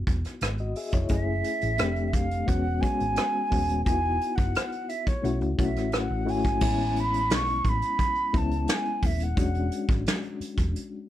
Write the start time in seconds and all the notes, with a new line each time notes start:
Already playing: B3 D#4 E4 F#4
0.07 E1, kick, closed hi-hat
0.25 cross-stick, closed hi-hat
0.41 G#1, cross-stick, closed hi-hat
0.58 F#4 D#5, closed hi-hat
0.76 G#4 E5, open hi-hat
0.92 F1 E4 C#5, kick, closed hi-hat
1.08 F#1 A3 C#4 E4 G#4 E5, kick, closed hi-hat
1.44 closed hi-hat
1.61 A1, closed hi-hat
1.78 F1 A3 C4 D4 G4, cross-stick, closed hi-hat
1.96 closed hi-hat
2.08 E5
2.13 F5, kick, closed hi-hat
2.31 closed hi-hat
2.46 E1 G#3 B3 C#4 F#4 F#5, kick, closed hi-hat
2.81 G#3 B3 C#4 F#4 G#5, kick, closed hi-hat
3.00 G#1, closed hi-hat
3.16 cross-stick, closed hi-hat
3.50 D#1 G#3 B3 C#4 F#4, kick, open hi-hat
3.69 closed hi-hat
3.84 E1 B3 D#4 E4 F4 G#5, kick, closed hi-hat
3.94 F#4
4.21 closed hi-hat
4.35 F#1 F#5, kick, closed hi-hat
4.55 cross-stick, closed hi-hat
4.72 closed hi-hat
4.89 E5, closed hi-hat
5.07 C#5, kick, closed hi-hat
5.22 B1 A3 C#4 E4 F#4, closed hi-hat
5.41 C#2, closed hi-hat
5.58 B1 A3 C#4 E4 F#4 E5, kick, closed hi-hat
5.76 A1, cross-stick, closed hi-hat
5.92 F#5, cross-stick, closed hi-hat
6.10 A1
6.25 G#1 A3 C#4 E4 F#4, open hi-hat
6.30 G#5
6.44 kick, closed hi-hat
6.61 A1 G#3 B3 C#4 E4, kick, crash
6.96 B5, closed hi-hat
7.14 closed hi-hat
7.30 B1, snare, closed hi-hat
7.35 C#6
7.46 closed hi-hat
7.65 A1, kick, closed hi-hat
7.69 B5
7.82 closed hi-hat
7.99 kick, closed hi-hat
8.15 closed hi-hat
8.33 C#2 G#3 B3 C#4 E4, kick, closed hi-hat
8.37 A5
8.51 closed hi-hat
8.68 snare, closed hi-hat
8.73 G#5
8.85 closed hi-hat
9.02 D#1 E5, kick, open hi-hat
9.20 F#5, closed hi-hat
9.36 E1 G#3 C#4 D4 F#4, kick, closed hi-hat
9.54 closed hi-hat
9.72 closed hi-hat
9.89 G#1, kick, closed hi-hat
10.06 snare, closed hi-hat
10.23 closed hi-hat
10.40 muted fingered electric bass stroke, closed hi-hat
10.58 E1, kick, closed hi-hat
10.76 closed hi-hat